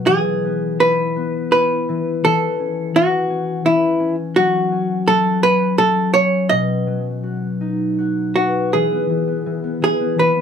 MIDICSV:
0, 0, Header, 1, 3, 480
1, 0, Start_track
1, 0, Key_signature, 4, "major"
1, 0, Tempo, 726392
1, 45, Time_signature, 3, 2, 24, 8
1, 1484, Tempo, 710059
1, 4364, Tempo, 735294
1, 6915, End_track
2, 0, Start_track
2, 0, Title_t, "Hollow-body jazz guitar"
2, 0, Program_c, 0, 26
2, 44, Note_on_c, 0, 68, 85
2, 528, Note_off_c, 0, 68, 0
2, 530, Note_on_c, 0, 71, 86
2, 996, Note_off_c, 0, 71, 0
2, 1004, Note_on_c, 0, 71, 78
2, 1482, Note_off_c, 0, 71, 0
2, 1484, Note_on_c, 0, 69, 90
2, 1966, Note_on_c, 0, 66, 89
2, 1979, Note_off_c, 0, 69, 0
2, 2435, Note_off_c, 0, 66, 0
2, 2438, Note_on_c, 0, 64, 79
2, 2771, Note_off_c, 0, 64, 0
2, 2914, Note_on_c, 0, 66, 83
2, 3397, Note_on_c, 0, 69, 100
2, 3413, Note_off_c, 0, 66, 0
2, 3635, Note_off_c, 0, 69, 0
2, 3638, Note_on_c, 0, 71, 93
2, 3860, Note_off_c, 0, 71, 0
2, 3875, Note_on_c, 0, 69, 91
2, 4111, Note_off_c, 0, 69, 0
2, 4114, Note_on_c, 0, 73, 96
2, 4354, Note_off_c, 0, 73, 0
2, 4356, Note_on_c, 0, 75, 87
2, 5296, Note_off_c, 0, 75, 0
2, 5571, Note_on_c, 0, 66, 66
2, 5814, Note_off_c, 0, 66, 0
2, 5817, Note_on_c, 0, 68, 64
2, 6531, Note_off_c, 0, 68, 0
2, 6539, Note_on_c, 0, 68, 71
2, 6769, Note_off_c, 0, 68, 0
2, 6772, Note_on_c, 0, 71, 67
2, 6915, Note_off_c, 0, 71, 0
2, 6915, End_track
3, 0, Start_track
3, 0, Title_t, "Harp"
3, 0, Program_c, 1, 46
3, 0, Note_on_c, 1, 47, 56
3, 0, Note_on_c, 1, 54, 47
3, 0, Note_on_c, 1, 59, 50
3, 0, Note_on_c, 1, 64, 53
3, 54, Note_on_c, 1, 52, 62
3, 78, Note_off_c, 1, 47, 0
3, 78, Note_off_c, 1, 54, 0
3, 78, Note_off_c, 1, 64, 0
3, 293, Note_off_c, 1, 59, 0
3, 295, Note_on_c, 1, 59, 45
3, 530, Note_on_c, 1, 64, 50
3, 765, Note_off_c, 1, 59, 0
3, 768, Note_on_c, 1, 59, 52
3, 1009, Note_off_c, 1, 64, 0
3, 1011, Note_on_c, 1, 64, 51
3, 1239, Note_off_c, 1, 52, 0
3, 1247, Note_on_c, 1, 52, 54
3, 1479, Note_off_c, 1, 52, 0
3, 1487, Note_on_c, 1, 52, 63
3, 1721, Note_on_c, 1, 61, 50
3, 1954, Note_off_c, 1, 52, 0
3, 1962, Note_on_c, 1, 52, 52
3, 2194, Note_off_c, 1, 61, 0
3, 2197, Note_on_c, 1, 61, 54
3, 2421, Note_off_c, 1, 52, 0
3, 2429, Note_on_c, 1, 52, 59
3, 2665, Note_off_c, 1, 61, 0
3, 2668, Note_on_c, 1, 61, 53
3, 2766, Note_off_c, 1, 64, 0
3, 2851, Note_off_c, 1, 59, 0
3, 2911, Note_on_c, 1, 54, 60
3, 2951, Note_off_c, 1, 52, 0
3, 3153, Note_off_c, 1, 61, 0
3, 3156, Note_on_c, 1, 61, 55
3, 3387, Note_off_c, 1, 54, 0
3, 3395, Note_on_c, 1, 54, 57
3, 3639, Note_off_c, 1, 61, 0
3, 3641, Note_on_c, 1, 61, 57
3, 3870, Note_off_c, 1, 54, 0
3, 3878, Note_on_c, 1, 54, 55
3, 4117, Note_off_c, 1, 61, 0
3, 4120, Note_on_c, 1, 61, 56
3, 4366, Note_on_c, 1, 47, 69
3, 4396, Note_off_c, 1, 54, 0
3, 4600, Note_on_c, 1, 54, 49
3, 4839, Note_on_c, 1, 66, 47
3, 5083, Note_on_c, 1, 63, 49
3, 5326, Note_off_c, 1, 66, 0
3, 5329, Note_on_c, 1, 66, 53
3, 5578, Note_on_c, 1, 71, 51
3, 5824, Note_on_c, 1, 52, 58
3, 5850, Note_off_c, 1, 47, 0
3, 5850, Note_off_c, 1, 54, 0
3, 5863, Note_off_c, 1, 63, 0
3, 5935, Note_on_c, 1, 59, 47
3, 6020, Note_off_c, 1, 61, 0
3, 6047, Note_off_c, 1, 52, 0
3, 6055, Note_on_c, 1, 52, 43
3, 6170, Note_off_c, 1, 59, 0
3, 6173, Note_on_c, 1, 59, 47
3, 6285, Note_off_c, 1, 52, 0
3, 6293, Note_on_c, 1, 52, 52
3, 6406, Note_off_c, 1, 59, 0
3, 6409, Note_on_c, 1, 59, 51
3, 6518, Note_off_c, 1, 52, 0
3, 6526, Note_on_c, 1, 52, 62
3, 6643, Note_off_c, 1, 59, 0
3, 6645, Note_on_c, 1, 59, 45
3, 6759, Note_off_c, 1, 52, 0
3, 6767, Note_on_c, 1, 52, 48
3, 6874, Note_off_c, 1, 59, 0
3, 6876, Note_on_c, 1, 59, 49
3, 6915, Note_off_c, 1, 52, 0
3, 6915, Note_off_c, 1, 59, 0
3, 6915, Note_off_c, 1, 66, 0
3, 6915, Note_off_c, 1, 71, 0
3, 6915, End_track
0, 0, End_of_file